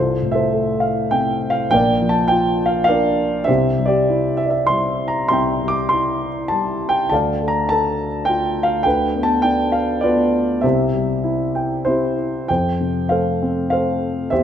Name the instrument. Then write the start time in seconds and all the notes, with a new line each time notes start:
grand piano
Already playing: C2 F4 A4 C5
0.22 A2
0.32 A4 C5 E5
0.53 A3
0.80 F5
1.11 C3 G5
1.50 F5
1.71 A#1 A#2 A#4 D5 G5
2.01 F3
2.09 A5
2.28 F4 G5
2.66 F5
2.84 F5
2.88 D4 A#4 D5
3.44 G4 C5 E5
3.48 C2 C3
3.79 G3
3.86 G4 D5
4.09 E4
4.37 E5
4.45 D5
4.50 E5
4.67 G3 C6
5.08 A#5
5.28 C2 C3 E5 G5 C6
5.62 G3
5.68 D6
5.89 E4 C6
6.48 G3 A5
6.89 G5
7.09 D2 D3 D5 F5 A5
7.41 A3
7.48 A#5
7.69 A4 A5
8.25 F4 G5
8.63 F5
8.83 D2 D3 B4 G5
9.14 B3
9.23 A5
9.42 D4 G5
9.72 F5
10.01 B3 F4 B4 D5
10.61 C2 C3 G4 C5 E5
10.94 G3
11.24 E4
11.55 G5
11.85 C4 E4 G4 C5
12.48 F2 C5 G5
12.80 C3
13.09 A3 A4 C5 F5
13.42 C4
13.70 A3 A4 C5 F5
14.30 E2 G4 C5 E5